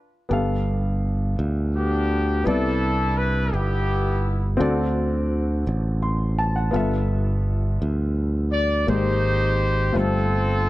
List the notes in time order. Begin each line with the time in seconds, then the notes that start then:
0.29 G1 G2 B3 G4 A4
0.33 F5
1.39 D2
1.76 B3 D4 G4
2.44 C2 C3 B3 D4 E4 A4 B4
2.48 D5
3.18 B4
3.52 G1 B3 E4 G4
4.57 D2 D3 C4 F#4 A4
4.61 D5
5.67 A1
6.02 C6
6.38 A5
6.56 F#5
6.71 G1 G2 B3 F4 A4
6.76 E5
7.82 D2
8.52 D5
8.87 G#1 G#2 G#3 A#3 D#4 G4 C5
9.92 G1 G2 A3 F4 G4 C5
9.97 C4 F4 A4